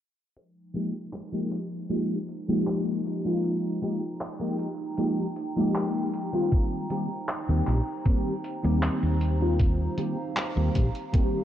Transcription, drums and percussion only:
0.36 closed hi-hat
0.75 closed hi-hat
1.13 clap, closed hi-hat
1.52 clap, closed hi-hat
1.90 closed hi-hat
2.29 closed hi-hat
2.67 clap, closed hi-hat
3.06 closed hi-hat
3.44 closed hi-hat
3.83 closed hi-hat
4.21 clap, closed hi-hat
4.59 closed hi-hat
4.98 closed hi-hat
5.36 closed hi-hat
5.75 clap, closed hi-hat
6.13 closed hi-hat
6.52 kick, closed hi-hat
6.90 closed hi-hat
7.29 clap, closed hi-hat
7.67 clap, closed hi-hat
8.06 kick, closed hi-hat
8.44 closed hi-hat
8.83 clap, closed hi-hat
9.21 closed hi-hat
9.60 kick, closed hi-hat
9.98 closed hi-hat
10.37 clap, closed hi-hat
10.75 kick, closed hi-hat
10.95 closed hi-hat
11.14 kick, closed hi-hat

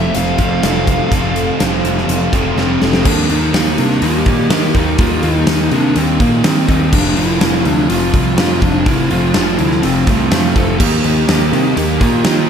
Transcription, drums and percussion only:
0.15 closed hi-hat
0.38 kick, closed hi-hat
0.63 snare, closed hi-hat
0.87 kick, closed hi-hat
1.12 kick, closed hi-hat
1.36 closed hi-hat
1.60 snare, closed hi-hat
1.85 closed hi-hat
1.98 snare
2.09 closed hi-hat
2.33 kick, closed hi-hat
2.58 snare
2.82 snare
2.93 snare
3.05 kick, crash
3.30 open hi-hat
3.54 snare, open hi-hat
3.78 open hi-hat
3.91 snare
4.02 open hi-hat
4.26 kick, open hi-hat
4.50 snare, open hi-hat
4.75 kick, open hi-hat
4.98 kick, open hi-hat
5.23 open hi-hat
5.47 snare, open hi-hat
5.72 open hi-hat
5.96 open hi-hat
6.20 kick, open hi-hat
6.44 snare, open hi-hat
6.69 kick, open hi-hat
6.93 kick, crash
7.17 open hi-hat
7.41 snare, open hi-hat
7.65 open hi-hat
7.90 open hi-hat
8.14 kick, open hi-hat
8.38 snare, open hi-hat
8.62 kick, open hi-hat
8.86 kick, open hi-hat
9.11 open hi-hat
9.34 snare, open hi-hat
9.59 open hi-hat
9.71 snare
9.83 open hi-hat
10.07 kick, open hi-hat
10.31 snare, open hi-hat
10.56 kick, open hi-hat
10.80 kick, crash
11.04 open hi-hat
11.29 snare, open hi-hat
11.53 open hi-hat
11.77 open hi-hat
12.01 kick, open hi-hat
12.24 snare, open hi-hat

